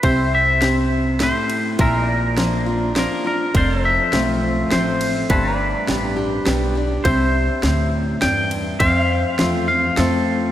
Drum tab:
RD |x-x-xx|x-x-x-|x-x-xx|x-x-x-|
SD |--o-o-|--o-o-|--o-o-|--o-o-|
BD |o-----|o-----|o-----|o-----|

RD |x-x-xx|x-x-x-|
SD |--o-o-|--o-o-|
BD |o-----|o-----|